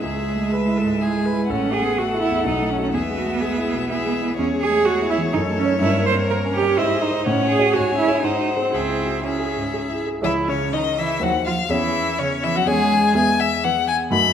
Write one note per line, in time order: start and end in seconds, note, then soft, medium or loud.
0.03 1.45 C#2 soft
0.03 1.47 G#3 medium
0.03 0.54 G#4 soft
0.03 1.03 E5 soft
0.19 0.46 G#3 soft
0.36 0.52 A3 soft
0.52 0.78 G#3 soft
0.52 0.79 B4 soft
0.68 0.94 E4 soft
0.77 1.03 A4 soft
0.84 1.10 G#2 soft
1.01 1.27 E4 soft
1.01 1.27 G#4 soft
1.01 1.49 G#5 soft
1.17 1.43 G#3 soft
1.25 1.51 B4 soft
1.33 1.49 E4 soft
1.49 2.43 A1 soft
1.49 1.75 C#4 soft
1.49 1.98 A4 soft
1.49 2.91 F#5 soft
1.66 1.92 A3 soft
1.73 2.00 G#4 medium
1.82 1.98 B3 soft
1.98 2.24 A3 soft
1.98 2.21 F#4 soft
1.98 2.92 A4 soft
2.14 2.40 E4 soft
2.22 2.45 E4 medium
2.30 2.46 E2 soft
2.46 2.92 B1 soft
2.46 2.71 D#4 soft
2.62 2.88 A3 soft
2.70 2.82 C#4 medium
2.78 2.92 D#4 soft
2.78 2.92 F#4 soft
2.83 2.87 C#4 soft
2.93 4.34 E2 soft
2.93 4.35 B3 medium
2.93 3.02 G#4 soft
2.93 3.88 E5 soft
3.10 3.35 G#3 soft
3.17 3.42 F#4 soft
3.26 3.42 A3 soft
3.41 3.67 G#3 soft
3.41 3.89 G#4 soft
3.58 3.84 E4 soft
3.75 4.00 B2 soft
3.90 4.16 E4 soft
3.90 4.37 G#4 soft
3.90 4.37 E5 soft
4.06 4.32 G#3 soft
4.22 4.38 E4 soft
4.38 5.31 E2 soft
4.38 4.46 C#4 medium
4.38 5.36 G#4 soft
4.38 6.80 C#5 soft
4.54 4.80 G#3 soft
4.61 4.86 G#4 medium
4.70 4.86 A3 soft
4.85 5.12 G#3 soft
4.85 5.09 F#4 medium
5.02 5.27 E4 soft
5.10 5.18 E4 medium
5.18 5.34 E3 soft
5.33 5.80 F#2 soft
5.33 5.41 D#4 medium
5.33 5.81 A4 soft
5.50 5.75 A3 soft
5.58 5.81 C#4 medium
5.65 5.80 D#4 soft
5.65 5.80 C#5 soft
5.81 6.75 G2 medium
5.81 6.05 E4 medium
5.81 6.80 A#4 soft
5.97 6.23 A#3 soft
6.06 6.14 C5 medium
6.13 6.29 C4 soft
6.29 6.55 A#3 soft
6.29 6.38 A#4 medium
6.45 6.71 C#4 soft
6.53 6.79 G4 medium
6.62 6.78 G3 soft
6.78 7.25 G#2 soft
6.78 7.03 E4 medium
6.78 7.26 C5 soft
6.78 7.26 D#5 soft
6.94 7.20 G#3 soft
7.02 7.27 D#4 medium
7.11 7.25 D#4 soft
7.11 7.25 C5 soft
7.26 7.74 A2 soft
7.26 7.49 C#4 medium
7.26 7.72 C#5 soft
7.26 7.77 F#5 soft
7.43 7.69 C#4 soft
7.50 7.75 G#4 medium
7.59 7.74 F#4 soft
7.59 7.74 C#5 soft
7.73 8.22 G#2 soft
7.73 7.97 F#4 medium
7.73 8.25 C#5 soft
7.73 8.26 G#5 soft
7.91 8.18 C#4 soft
7.98 8.22 E4 medium
8.08 8.22 G#4 soft
8.08 8.23 C#5 soft
8.23 8.72 G#2 soft
8.23 8.60 D#4 medium
8.23 8.74 C5 soft
8.23 8.76 F#5 soft
8.39 8.67 F#4 soft
8.57 8.72 G#4 soft
8.57 8.72 C5 soft
8.61 8.72 C4 soft
8.72 10.19 C#2 soft
8.72 9.25 C4 medium
8.72 9.24 G#4 soft
8.72 9.24 E5 soft
8.89 9.17 E4 soft
9.06 9.24 F#4 soft
9.22 9.74 C#4 soft
9.22 9.50 E4 soft
9.22 10.02 G#4 soft
9.22 10.02 E5 soft
9.39 9.67 G#4 soft
9.57 9.84 G#2 soft
9.74 10.01 G#4 soft
9.90 10.17 E4 soft
10.07 10.21 G#4 soft
10.21 11.18 C#2 soft
10.21 10.31 E3 soft
10.21 11.18 E4 soft
10.21 10.50 E4 soft
10.21 11.19 G#4 soft
10.21 11.19 C#5 soft
10.21 10.32 E5 medium
10.49 10.74 C#3 soft
10.49 10.73 C#4 soft
10.49 10.75 C#5 medium
10.73 10.99 D#3 soft
10.73 10.82 D#4 soft
10.73 10.99 D#5 medium
10.98 11.21 E3 medium
10.98 11.22 E4 soft
10.98 11.24 E5 medium
11.20 11.68 D#2 soft
11.20 11.30 F#3 medium
11.20 11.68 D#4 soft
11.20 11.68 F#4 soft
11.20 11.31 F#4 medium
11.20 11.69 C5 soft
11.20 11.46 F#5 medium
11.46 11.55 F3 medium
11.46 11.54 F4 soft
11.46 11.72 F5 medium
11.69 12.64 E2 soft
11.69 12.19 E3 medium
11.69 12.64 C#4 soft
11.69 12.21 E4 medium
11.69 12.64 G#4 soft
11.69 12.65 C#5 soft
11.69 12.20 E5 medium
12.19 12.28 C#3 soft
12.19 12.44 C#4 medium
12.19 12.45 C#5 medium
12.43 12.58 E3 medium
12.43 12.57 E4 medium
12.43 12.58 E5 medium
12.56 12.67 F#3 soft
12.56 12.66 F#4 soft
12.56 12.68 F#5 medium
12.66 13.12 E2 soft
12.66 13.15 G#3 medium
12.66 13.14 C#4 soft
12.66 13.13 G#4 soft
12.66 13.14 G#4 medium
12.66 13.14 C#5 soft
12.66 13.15 G#5 medium
13.14 14.08 E2 soft
13.14 14.09 B3 soft
13.14 14.09 G#4 soft
13.14 14.09 E5 soft
13.14 13.41 G#5 medium
13.40 13.65 E5 medium
13.64 14.00 E3 soft
13.64 14.00 B3 medium
13.64 13.88 F#5 medium
13.88 13.96 G#5 medium
14.10 14.33 F#2 soft
14.10 14.33 D#3 medium
14.10 14.33 A3 soft
14.10 14.33 F#4 soft
14.10 14.33 D#5 soft
14.10 14.33 B5 medium